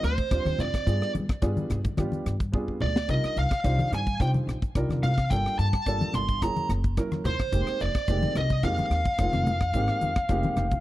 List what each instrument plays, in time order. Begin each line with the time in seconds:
Already playing: grand piano D4 F4 A#4
0.03 upright bass D2, lead electric guitar C5, cross-stick, closed hi-hat
0.17 muted upright bass stroke, kick, closed hi-hat
0.31 upright bass D#2, grand piano G3 C4 D4 F4 C5, kick, cross-stick, closed hi-hat
0.45 upright bass D#2, cross-stick, closed hi-hat, high conga
0.58 upright bass F2, lead electric guitar D5, closed hi-hat, low conga
0.74 kick, cross-stick, closed hi-hat
0.86 upright bass G2, grand piano G3 B3 D4 F4 G#4, kick, closed hi-hat
1.02 cross-stick
1.15 upright bass G3, closed hi-hat, high conga
1.29 muted upright bass stroke, kick, cross-stick, closed hi-hat
1.42 upright bass G2, grand piano G3 B3 D4 F4 G#4, kick, cross-stick, closed hi-hat
1.57 closed hi-hat, high conga
1.70 upright bass G2, cross-stick, closed hi-hat, low conga
1.84 kick, closed hi-hat, low conga
1.97 upright bass G2, grand piano G3 B3 D4 F4 G4, kick, cross-stick, closed hi-hat, high conga
2.12 muted upright bass stroke, closed hi-hat, high conga
2.26 upright bass G2, cross-stick, closed hi-hat
2.40 kick, closed hi-hat
2.52 upright bass F2, grand piano G3 B3 D4 F4 G#4, kick
2.68 kick
2.80 upright bass D2, lead electric guitar D5, mid tom, low conga
2.96 snare
3.08 upright bass C2, grand piano G3 D4 D#4 F4 A#4, lead electric guitar D#5, kick, closed hi-hat
3.24 muted upright bass stroke, cross-stick, closed hi-hat
3.36 upright bass C2, lead electric guitar F5, closed hi-hat
3.51 muted upright bass stroke, kick, cross-stick, closed hi-hat
3.64 upright bass C2, grand piano G3 D4 D#4 F4 C5, kick, cross-stick, closed hi-hat
3.79 closed hi-hat, high conga
3.92 upright bass G2, lead electric guitar G#5, cross-stick, closed hi-hat, low conga
4.07 kick, closed hi-hat
4.20 upright bass C3, grand piano G3 D4 D#4 F4 C5, lead electric guitar G5, kick, cross-stick, closed hi-hat
4.34 muted upright bass stroke, closed hi-hat, high conga
4.47 upright bass A#1, cross-stick, closed hi-hat
4.62 muted upright bass stroke, kick, closed hi-hat
4.75 upright bass C2, grand piano G3 D4 D#4 F4 A#4, kick, cross-stick, closed hi-hat
4.89 upright bass C2, cross-stick, closed hi-hat, high conga
5.03 upright bass C3, lead electric guitar F5, closed hi-hat, low conga
5.18 kick, cross-stick, closed hi-hat
5.30 upright bass G1, grand piano G3 A#3 D4 F4 A4, lead electric guitar G5, kick, closed hi-hat
5.46 cross-stick
5.59 upright bass G2, lead electric guitar A5, closed hi-hat
5.73 muted upright bass stroke, kick, cross-stick, closed hi-hat
5.86 upright bass G1, grand piano G3 A#3 D4 F4 A4, kick, cross-stick, closed hi-hat
6.01 closed hi-hat, high conga
6.13 upright bass G1, lead electric guitar C6, cross-stick, closed hi-hat, low conga
6.29 kick, closed hi-hat
6.42 upright bass F#1, grand piano F#3 A#3 C#4 E4 G#4, lead electric guitar A#5, kick, cross-stick, closed hi-hat
6.55 muted upright bass stroke, closed hi-hat, high conga
6.69 upright bass F#1, cross-stick, closed hi-hat
6.84 kick, closed hi-hat
6.97 grand piano F#3 A#3 C#4 E4 A#4, kick, cross-stick, closed hi-hat
7.12 cross-stick, closed hi-hat, high conga
7.24 upright bass D#2, lead electric guitar C5, closed hi-hat, low conga
7.39 muted upright bass stroke, kick, cross-stick, closed hi-hat
7.52 upright bass F1, grand piano G#3 A#3 C4 D#4 G4, kick, closed hi-hat
7.67 muted upright bass stroke, cross-stick, closed hi-hat
7.80 upright bass F1, lead electric guitar D5, closed hi-hat
7.95 muted upright bass stroke, kick, cross-stick, closed hi-hat
8.08 upright bass F1, grand piano G#3 A#3 C4 D#4 G4, kick, cross-stick, closed hi-hat
8.22 closed hi-hat, high conga
8.35 upright bass C2, lead electric guitar D#5, cross-stick, closed hi-hat, low conga
8.50 kick, closed hi-hat
8.63 upright bass F2, grand piano G#3 A#3 C4 D#4 G4, lead electric guitar F5, kick, cross-stick, closed hi-hat
8.78 muted upright bass stroke, closed hi-hat, high conga
8.90 upright bass D#2, cross-stick, closed hi-hat
9.05 muted upright bass stroke, kick, closed hi-hat
9.18 upright bass F1, grand piano G#3 A#3 C4 D#4 F4, kick, cross-stick, closed hi-hat
9.33 upright bass F1, cross-stick, closed hi-hat, high conga
9.46 upright bass F2, closed hi-hat, low conga
9.60 kick, cross-stick, closed hi-hat
9.73 upright bass G#1, grand piano G#3 A#3 C4 D#4 G4, kick, closed hi-hat
9.88 cross-stick
10.01 upright bass F2, closed hi-hat, high conga
10.16 muted upright bass stroke, kick, cross-stick, closed hi-hat
10.29 upright bass F1, grand piano G#3 A#3 C4 D#4 G4, kick, cross-stick, closed hi-hat
10.43 closed hi-hat, high conga
10.56 upright bass F1, grand piano G5, cross-stick, closed hi-hat, low conga
10.71 kick, closed hi-hat, low conga